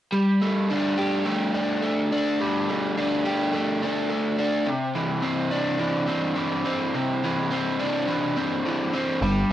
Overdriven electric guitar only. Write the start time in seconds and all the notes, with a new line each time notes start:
0.12 G3
0.41 A3
0.70 D4
0.98 G4
1.26 A3
1.54 D4
1.83 A3
2.12 D4
2.40 G3
2.69 A3
2.98 D4
3.25 G4
3.53 A3
3.82 D4
4.10 A3
4.38 D4
4.66 C3
4.95 E3
5.22 C4
5.51 D4
5.79 E3
6.08 C4
6.36 E3
6.66 C4
6.94 C3
7.24 E3
7.51 C4
7.79 D4
8.08 E3
8.37 C4
8.66 E3
8.94 C4
9.22 G3